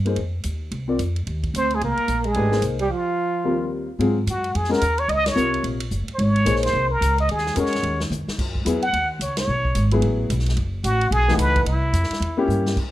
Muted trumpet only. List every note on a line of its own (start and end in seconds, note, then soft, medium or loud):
1.57 1.76 C5 medium
1.75 1.82 G#4 medium
1.84 2.29 A#4 medium
2.27 2.64 G#4 medium
2.81 2.91 G4 medium
2.93 3.70 F4 medium
4.30 4.57 F#4 medium
4.56 4.72 G#4 medium
4.73 5.01 A#4 medium
4.99 5.11 C#5 medium
5.09 5.29 D#5 loud
5.28 5.65 C#5 medium
6.14 6.21 C5 medium
6.20 6.64 C#5 medium
6.63 6.93 C5 medium
6.91 7.18 A#4 medium
7.20 7.29 D#5 loud
7.31 7.61 G#4 medium
7.59 8.02 C#5 medium
8.82 9.08 F#5 medium
9.22 9.37 C#5 medium
9.38 9.89 C#5 medium
10.85 11.13 F#4 medium
11.12 11.40 G#4 loud
11.39 11.66 B4 medium
11.67 12.45 E4 medium